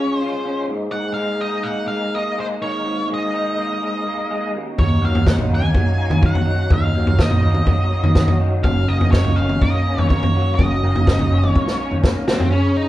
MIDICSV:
0, 0, Header, 1, 6, 480
1, 0, Start_track
1, 0, Tempo, 481928
1, 934, Time_signature, 4, 2, 24, 8
1, 12833, End_track
2, 0, Start_track
2, 0, Title_t, "Lead electric guitar"
2, 0, Program_c, 0, 29
2, 0, Note_on_c, 0, 73, 75
2, 171, Note_off_c, 0, 73, 0
2, 171, Note_on_c, 0, 72, 75
2, 659, Note_off_c, 0, 72, 0
2, 917, Note_on_c, 0, 78, 103
2, 1128, Note_off_c, 0, 78, 0
2, 1132, Note_on_c, 0, 77, 92
2, 1401, Note_off_c, 0, 77, 0
2, 1403, Note_on_c, 0, 75, 85
2, 1626, Note_on_c, 0, 78, 91
2, 1655, Note_off_c, 0, 75, 0
2, 1866, Note_off_c, 0, 78, 0
2, 1870, Note_on_c, 0, 77, 94
2, 2129, Note_off_c, 0, 77, 0
2, 2139, Note_on_c, 0, 75, 81
2, 2383, Note_off_c, 0, 75, 0
2, 2391, Note_on_c, 0, 72, 81
2, 2453, Note_off_c, 0, 72, 0
2, 2611, Note_on_c, 0, 73, 87
2, 3058, Note_off_c, 0, 73, 0
2, 3125, Note_on_c, 0, 75, 76
2, 4508, Note_off_c, 0, 75, 0
2, 4771, Note_on_c, 0, 73, 82
2, 5018, Note_off_c, 0, 73, 0
2, 5028, Note_on_c, 0, 77, 75
2, 5254, Note_off_c, 0, 77, 0
2, 5258, Note_on_c, 0, 78, 92
2, 5322, Note_off_c, 0, 78, 0
2, 5526, Note_on_c, 0, 80, 92
2, 6230, Note_off_c, 0, 80, 0
2, 6234, Note_on_c, 0, 78, 87
2, 6704, Note_off_c, 0, 78, 0
2, 6708, Note_on_c, 0, 77, 91
2, 7184, Note_on_c, 0, 75, 71
2, 7194, Note_off_c, 0, 77, 0
2, 8340, Note_off_c, 0, 75, 0
2, 8602, Note_on_c, 0, 77, 100
2, 8849, Note_on_c, 0, 75, 82
2, 8856, Note_off_c, 0, 77, 0
2, 9072, Note_off_c, 0, 75, 0
2, 9076, Note_on_c, 0, 73, 82
2, 9323, Note_on_c, 0, 77, 103
2, 9334, Note_off_c, 0, 73, 0
2, 9577, Note_off_c, 0, 77, 0
2, 9581, Note_on_c, 0, 75, 93
2, 10042, Note_off_c, 0, 75, 0
2, 10046, Note_on_c, 0, 73, 86
2, 10505, Note_off_c, 0, 73, 0
2, 10509, Note_on_c, 0, 75, 83
2, 11455, Note_off_c, 0, 75, 0
2, 11455, Note_on_c, 0, 73, 83
2, 11926, Note_off_c, 0, 73, 0
2, 12230, Note_on_c, 0, 60, 75
2, 12452, Note_off_c, 0, 60, 0
2, 12456, Note_on_c, 0, 61, 91
2, 12705, Note_off_c, 0, 61, 0
2, 12716, Note_on_c, 0, 63, 90
2, 12833, Note_off_c, 0, 63, 0
2, 12833, End_track
3, 0, Start_track
3, 0, Title_t, "Tonewheel organ"
3, 0, Program_c, 1, 16
3, 0, Note_on_c, 1, 56, 59
3, 0, Note_on_c, 1, 61, 53
3, 0, Note_on_c, 1, 65, 57
3, 0, Note_on_c, 1, 68, 69
3, 669, Note_off_c, 1, 61, 0
3, 672, Note_off_c, 1, 56, 0
3, 678, Note_off_c, 1, 65, 0
3, 683, Note_on_c, 1, 63, 57
3, 685, Note_on_c, 1, 58, 68
3, 694, Note_on_c, 1, 56, 56
3, 2582, Note_off_c, 1, 68, 0
3, 2611, Note_on_c, 1, 70, 67
3, 4488, Note_off_c, 1, 58, 0
3, 4492, Note_off_c, 1, 56, 0
3, 4511, Note_off_c, 1, 70, 0
3, 4548, Note_on_c, 1, 61, 56
3, 4557, Note_on_c, 1, 58, 58
3, 4559, Note_on_c, 1, 66, 70
3, 8569, Note_off_c, 1, 63, 0
3, 8606, Note_on_c, 1, 63, 59
3, 12418, Note_off_c, 1, 63, 0
3, 12429, Note_off_c, 1, 61, 0
3, 12434, Note_off_c, 1, 58, 0
3, 12435, Note_off_c, 1, 66, 0
3, 12833, End_track
4, 0, Start_track
4, 0, Title_t, "Clean electric guitar"
4, 0, Program_c, 2, 27
4, 0, Note_on_c, 2, 49, 69
4, 0, Note_on_c, 2, 56, 59
4, 0, Note_on_c, 2, 61, 63
4, 0, Note_on_c, 2, 65, 73
4, 0, Note_on_c, 2, 68, 70
4, 199, Note_off_c, 2, 65, 0
4, 210, Note_off_c, 2, 49, 0
4, 211, Note_on_c, 2, 65, 73
4, 440, Note_off_c, 2, 61, 0
4, 452, Note_on_c, 2, 61, 66
4, 689, Note_on_c, 2, 44, 67
4, 693, Note_off_c, 2, 61, 0
4, 693, Note_off_c, 2, 65, 0
4, 911, Note_off_c, 2, 44, 0
4, 922, Note_on_c, 2, 44, 71
4, 1159, Note_off_c, 2, 56, 0
4, 1159, Note_on_c, 2, 56, 70
4, 1398, Note_off_c, 2, 68, 0
4, 1402, Note_on_c, 2, 63, 67
4, 1641, Note_on_c, 2, 58, 68
4, 1876, Note_off_c, 2, 56, 0
4, 1888, Note_on_c, 2, 56, 60
4, 2127, Note_off_c, 2, 44, 0
4, 2132, Note_off_c, 2, 58, 0
4, 2136, Note_on_c, 2, 58, 74
4, 2358, Note_off_c, 2, 56, 0
4, 2370, Note_on_c, 2, 56, 70
4, 2610, Note_on_c, 2, 51, 64
4, 2844, Note_on_c, 2, 44, 72
4, 3066, Note_off_c, 2, 56, 0
4, 3078, Note_on_c, 2, 56, 71
4, 3319, Note_off_c, 2, 63, 0
4, 3323, Note_on_c, 2, 63, 75
4, 3559, Note_off_c, 2, 58, 0
4, 3563, Note_on_c, 2, 58, 73
4, 3792, Note_off_c, 2, 56, 0
4, 3804, Note_on_c, 2, 56, 64
4, 3810, Note_off_c, 2, 51, 0
4, 4040, Note_off_c, 2, 58, 0
4, 4044, Note_on_c, 2, 58, 75
4, 4047, Note_off_c, 2, 44, 0
4, 4276, Note_off_c, 2, 56, 0
4, 4288, Note_on_c, 2, 56, 73
4, 4529, Note_off_c, 2, 56, 0
4, 4530, Note_on_c, 2, 39, 65
4, 4759, Note_off_c, 2, 39, 0
4, 4763, Note_on_c, 2, 39, 68
4, 5003, Note_on_c, 2, 54, 69
4, 5238, Note_off_c, 2, 63, 0
4, 5242, Note_on_c, 2, 63, 68
4, 5481, Note_off_c, 2, 58, 0
4, 5485, Note_on_c, 2, 58, 72
4, 5718, Note_off_c, 2, 54, 0
4, 5722, Note_on_c, 2, 54, 66
4, 5953, Note_off_c, 2, 58, 0
4, 5957, Note_on_c, 2, 58, 72
4, 5967, Note_off_c, 2, 39, 0
4, 6189, Note_off_c, 2, 54, 0
4, 6193, Note_on_c, 2, 54, 67
4, 6427, Note_on_c, 2, 51, 59
4, 6680, Note_on_c, 2, 39, 75
4, 6920, Note_off_c, 2, 54, 0
4, 6924, Note_on_c, 2, 54, 66
4, 7156, Note_off_c, 2, 63, 0
4, 7160, Note_on_c, 2, 63, 72
4, 7388, Note_off_c, 2, 58, 0
4, 7392, Note_on_c, 2, 58, 75
4, 7630, Note_off_c, 2, 54, 0
4, 7634, Note_on_c, 2, 54, 65
4, 7641, Note_off_c, 2, 51, 0
4, 7875, Note_off_c, 2, 58, 0
4, 7879, Note_on_c, 2, 58, 76
4, 7887, Note_off_c, 2, 39, 0
4, 8116, Note_off_c, 2, 54, 0
4, 8120, Note_on_c, 2, 54, 76
4, 8363, Note_on_c, 2, 51, 61
4, 8605, Note_on_c, 2, 42, 69
4, 8609, Note_off_c, 2, 51, 0
4, 8850, Note_off_c, 2, 54, 0
4, 8854, Note_off_c, 2, 58, 0
4, 8854, Note_on_c, 2, 58, 76
4, 9096, Note_off_c, 2, 63, 0
4, 9100, Note_on_c, 2, 63, 72
4, 9346, Note_on_c, 2, 61, 70
4, 9578, Note_off_c, 2, 58, 0
4, 9590, Note_on_c, 2, 58, 72
4, 9812, Note_off_c, 2, 42, 0
4, 9822, Note_off_c, 2, 61, 0
4, 9826, Note_on_c, 2, 61, 76
4, 10056, Note_off_c, 2, 58, 0
4, 10068, Note_on_c, 2, 58, 66
4, 10300, Note_off_c, 2, 63, 0
4, 10313, Note_on_c, 2, 54, 66
4, 10548, Note_on_c, 2, 42, 76
4, 10777, Note_off_c, 2, 58, 0
4, 10789, Note_on_c, 2, 58, 72
4, 11024, Note_off_c, 2, 61, 0
4, 11025, Note_on_c, 2, 63, 70
4, 11266, Note_on_c, 2, 61, 72
4, 11494, Note_off_c, 2, 58, 0
4, 11506, Note_on_c, 2, 58, 74
4, 11507, Note_off_c, 2, 54, 0
4, 11736, Note_off_c, 2, 61, 0
4, 11745, Note_off_c, 2, 42, 0
4, 11748, Note_on_c, 2, 61, 75
4, 11978, Note_off_c, 2, 58, 0
4, 11990, Note_on_c, 2, 58, 74
4, 12224, Note_off_c, 2, 63, 0
4, 12227, Note_on_c, 2, 54, 71
4, 12464, Note_off_c, 2, 54, 0
4, 12464, Note_off_c, 2, 61, 0
4, 12465, Note_off_c, 2, 58, 0
4, 12481, Note_on_c, 2, 49, 81
4, 12833, Note_off_c, 2, 49, 0
4, 12833, End_track
5, 0, Start_track
5, 0, Title_t, "Picked electric bass"
5, 0, Program_c, 3, 34
5, 4769, Note_on_c, 3, 39, 95
5, 4991, Note_off_c, 3, 39, 0
5, 4996, Note_on_c, 3, 39, 74
5, 5224, Note_off_c, 3, 39, 0
5, 5242, Note_on_c, 3, 39, 83
5, 5349, Note_off_c, 3, 39, 0
5, 5355, Note_on_c, 3, 34, 87
5, 5470, Note_off_c, 3, 34, 0
5, 5476, Note_on_c, 3, 39, 81
5, 5704, Note_off_c, 3, 39, 0
5, 6077, Note_on_c, 3, 51, 90
5, 6305, Note_off_c, 3, 51, 0
5, 6679, Note_on_c, 3, 39, 102
5, 6906, Note_off_c, 3, 39, 0
5, 6920, Note_on_c, 3, 39, 75
5, 7147, Note_off_c, 3, 39, 0
5, 7162, Note_on_c, 3, 39, 91
5, 7270, Note_off_c, 3, 39, 0
5, 7275, Note_on_c, 3, 34, 79
5, 7394, Note_off_c, 3, 34, 0
5, 7401, Note_on_c, 3, 39, 84
5, 7627, Note_off_c, 3, 39, 0
5, 8004, Note_on_c, 3, 51, 89
5, 8229, Note_off_c, 3, 51, 0
5, 8606, Note_on_c, 3, 30, 105
5, 8831, Note_off_c, 3, 30, 0
5, 8847, Note_on_c, 3, 30, 77
5, 9072, Note_off_c, 3, 30, 0
5, 9089, Note_on_c, 3, 30, 88
5, 9203, Note_off_c, 3, 30, 0
5, 9218, Note_on_c, 3, 37, 87
5, 9328, Note_off_c, 3, 37, 0
5, 9351, Note_on_c, 3, 30, 86
5, 9565, Note_off_c, 3, 30, 0
5, 9947, Note_on_c, 3, 42, 100
5, 10164, Note_off_c, 3, 42, 0
5, 10543, Note_on_c, 3, 30, 100
5, 10762, Note_off_c, 3, 30, 0
5, 10794, Note_on_c, 3, 30, 85
5, 11008, Note_off_c, 3, 30, 0
5, 11028, Note_on_c, 3, 30, 86
5, 11135, Note_off_c, 3, 30, 0
5, 11158, Note_on_c, 3, 37, 90
5, 11260, Note_off_c, 3, 37, 0
5, 11275, Note_on_c, 3, 30, 86
5, 11489, Note_off_c, 3, 30, 0
5, 11877, Note_on_c, 3, 42, 94
5, 12091, Note_off_c, 3, 42, 0
5, 12833, End_track
6, 0, Start_track
6, 0, Title_t, "Drums"
6, 4764, Note_on_c, 9, 43, 79
6, 4766, Note_on_c, 9, 36, 96
6, 4864, Note_off_c, 9, 43, 0
6, 4866, Note_off_c, 9, 36, 0
6, 5128, Note_on_c, 9, 43, 84
6, 5228, Note_off_c, 9, 43, 0
6, 5243, Note_on_c, 9, 38, 75
6, 5244, Note_on_c, 9, 36, 102
6, 5343, Note_off_c, 9, 38, 0
6, 5344, Note_off_c, 9, 36, 0
6, 5361, Note_on_c, 9, 43, 81
6, 5461, Note_off_c, 9, 43, 0
6, 5596, Note_on_c, 9, 47, 79
6, 5696, Note_off_c, 9, 47, 0
6, 5720, Note_on_c, 9, 43, 78
6, 5723, Note_on_c, 9, 36, 102
6, 5819, Note_off_c, 9, 43, 0
6, 5822, Note_off_c, 9, 36, 0
6, 6082, Note_on_c, 9, 43, 88
6, 6082, Note_on_c, 9, 47, 82
6, 6182, Note_off_c, 9, 43, 0
6, 6182, Note_off_c, 9, 47, 0
6, 6202, Note_on_c, 9, 36, 109
6, 6202, Note_on_c, 9, 47, 69
6, 6302, Note_off_c, 9, 36, 0
6, 6302, Note_off_c, 9, 47, 0
6, 6324, Note_on_c, 9, 43, 84
6, 6324, Note_on_c, 9, 47, 76
6, 6424, Note_off_c, 9, 43, 0
6, 6424, Note_off_c, 9, 47, 0
6, 6674, Note_on_c, 9, 43, 77
6, 6679, Note_on_c, 9, 36, 108
6, 6773, Note_off_c, 9, 43, 0
6, 6779, Note_off_c, 9, 36, 0
6, 7040, Note_on_c, 9, 43, 82
6, 7140, Note_off_c, 9, 43, 0
6, 7159, Note_on_c, 9, 36, 103
6, 7160, Note_on_c, 9, 38, 73
6, 7258, Note_off_c, 9, 36, 0
6, 7260, Note_off_c, 9, 38, 0
6, 7276, Note_on_c, 9, 43, 87
6, 7376, Note_off_c, 9, 43, 0
6, 7514, Note_on_c, 9, 47, 80
6, 7614, Note_off_c, 9, 47, 0
6, 7634, Note_on_c, 9, 43, 77
6, 7638, Note_on_c, 9, 36, 108
6, 7733, Note_off_c, 9, 43, 0
6, 7738, Note_off_c, 9, 36, 0
6, 8003, Note_on_c, 9, 43, 85
6, 8003, Note_on_c, 9, 47, 73
6, 8102, Note_off_c, 9, 43, 0
6, 8102, Note_off_c, 9, 47, 0
6, 8117, Note_on_c, 9, 47, 76
6, 8119, Note_on_c, 9, 38, 75
6, 8123, Note_on_c, 9, 36, 102
6, 8217, Note_off_c, 9, 47, 0
6, 8219, Note_off_c, 9, 38, 0
6, 8222, Note_off_c, 9, 36, 0
6, 8243, Note_on_c, 9, 43, 90
6, 8243, Note_on_c, 9, 47, 76
6, 8343, Note_off_c, 9, 43, 0
6, 8343, Note_off_c, 9, 47, 0
6, 8603, Note_on_c, 9, 43, 83
6, 8605, Note_on_c, 9, 36, 101
6, 8702, Note_off_c, 9, 43, 0
6, 8705, Note_off_c, 9, 36, 0
6, 8970, Note_on_c, 9, 43, 90
6, 9070, Note_off_c, 9, 43, 0
6, 9092, Note_on_c, 9, 36, 108
6, 9094, Note_on_c, 9, 38, 78
6, 9191, Note_off_c, 9, 36, 0
6, 9194, Note_off_c, 9, 38, 0
6, 9205, Note_on_c, 9, 43, 82
6, 9305, Note_off_c, 9, 43, 0
6, 9453, Note_on_c, 9, 47, 83
6, 9553, Note_off_c, 9, 47, 0
6, 9575, Note_on_c, 9, 43, 76
6, 9577, Note_on_c, 9, 36, 102
6, 9675, Note_off_c, 9, 43, 0
6, 9677, Note_off_c, 9, 36, 0
6, 9940, Note_on_c, 9, 43, 81
6, 9940, Note_on_c, 9, 47, 77
6, 10040, Note_off_c, 9, 43, 0
6, 10040, Note_off_c, 9, 47, 0
6, 10061, Note_on_c, 9, 47, 76
6, 10063, Note_on_c, 9, 36, 101
6, 10160, Note_off_c, 9, 47, 0
6, 10163, Note_off_c, 9, 36, 0
6, 10186, Note_on_c, 9, 43, 84
6, 10186, Note_on_c, 9, 47, 84
6, 10286, Note_off_c, 9, 43, 0
6, 10286, Note_off_c, 9, 47, 0
6, 10547, Note_on_c, 9, 36, 112
6, 10548, Note_on_c, 9, 43, 82
6, 10647, Note_off_c, 9, 36, 0
6, 10647, Note_off_c, 9, 43, 0
6, 10911, Note_on_c, 9, 43, 81
6, 11011, Note_off_c, 9, 43, 0
6, 11028, Note_on_c, 9, 36, 104
6, 11030, Note_on_c, 9, 38, 77
6, 11128, Note_off_c, 9, 36, 0
6, 11130, Note_off_c, 9, 38, 0
6, 11145, Note_on_c, 9, 43, 87
6, 11245, Note_off_c, 9, 43, 0
6, 11389, Note_on_c, 9, 47, 77
6, 11488, Note_off_c, 9, 47, 0
6, 11509, Note_on_c, 9, 36, 99
6, 11511, Note_on_c, 9, 48, 62
6, 11609, Note_off_c, 9, 36, 0
6, 11610, Note_off_c, 9, 48, 0
6, 11627, Note_on_c, 9, 38, 54
6, 11727, Note_off_c, 9, 38, 0
6, 11863, Note_on_c, 9, 47, 65
6, 11963, Note_off_c, 9, 47, 0
6, 11987, Note_on_c, 9, 36, 104
6, 11988, Note_on_c, 9, 38, 82
6, 12087, Note_off_c, 9, 36, 0
6, 12087, Note_off_c, 9, 38, 0
6, 12227, Note_on_c, 9, 38, 91
6, 12327, Note_off_c, 9, 38, 0
6, 12349, Note_on_c, 9, 43, 84
6, 12448, Note_off_c, 9, 43, 0
6, 12833, End_track
0, 0, End_of_file